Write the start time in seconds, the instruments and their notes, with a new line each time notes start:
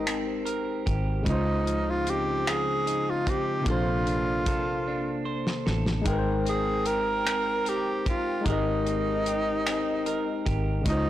Already playing: fingered electric bass G#1, tine electric piano G#3 D#4 G4 A#4 C5, clean electric guitar G#3 G4 A#4, tenor saxophone D#4
0.07 clean electric guitar C4, finger snap, closed hi-hat
0.45 clean electric guitar A#4, closed hi-hat
0.86 fingered electric bass G#1, clean electric guitar G4, kick, closed hi-hat
1.22 tine electric piano C#3 G#3, clean electric guitar C#3
1.26 fingered electric bass C#2, tine electric piano D#4 F4, clean electric guitar D#4, tenor saxophone D#4, kick, closed hi-hat
1.32 tine electric piano C5
1.66 clean electric guitar F3, closed hi-hat
1.90 tenor saxophone F4
2.07 clean electric guitar C4, tenor saxophone G4, closed hi-hat
2.46 clean electric guitar F3, tenor saxophone G#4, finger snap, closed hi-hat
2.87 clean electric guitar D#4, closed hi-hat
3.10 tenor saxophone F4
3.26 clean electric guitar C4, tenor saxophone G4, kick, closed hi-hat
3.61 tine electric piano C3 A#3
3.66 fingered electric bass A#1, clean electric guitar A#3 C5, tine electric piano D4 A4, tenor saxophone F4, kick, closed hi-hat
3.71 tine electric piano C5
4.07 clean electric guitar D4, closed hi-hat
4.46 clean electric guitar A4, kick, closed hi-hat
4.88 clean electric guitar D4
5.25 clean electric guitar C5
5.47 snare
5.66 fingered electric bass A1, clean electric guitar A4, snare
5.86 snare
6.02 tine electric piano G#3 D#4, clean electric guitar G#3
6.06 fingered electric bass G#1, clean electric guitar A#4, tine electric piano A#4 G5, kick, closed hi-hat
6.12 tine electric piano B4
6.18 tine electric piano C5
6.45 clean electric guitar C4, tenor saxophone G#4, closed hi-hat
6.85 clean electric guitar G4, tenor saxophone A#4, closed hi-hat
7.25 clean electric guitar C4, finger snap, closed hi-hat
7.65 tenor saxophone G4, clean electric guitar A#4, closed hi-hat
8.06 tenor saxophone F4, clean electric guitar G4, kick, closed hi-hat
8.41 tine electric piano G#3 D#4
8.46 fingered electric bass G#1, clean electric guitar G#3 A#4, tenor saxophone D#4, tine electric piano G4 A#4, kick, closed hi-hat
8.52 tine electric piano D#5
8.86 clean electric guitar C4, closed hi-hat
9.26 clean electric guitar G4, closed hi-hat
9.66 clean electric guitar C4, finger snap, closed hi-hat
10.06 clean electric guitar A#4, closed hi-hat
10.46 fingered electric bass G#1, clean electric guitar G4, kick, closed hi-hat
10.81 tine electric piano C#3 G#3, clean electric guitar C#3
10.86 fingered electric bass C#2, clean electric guitar D#4, tine electric piano D#4 F4, tenor saxophone D#4, kick, closed hi-hat
10.92 tine electric piano C5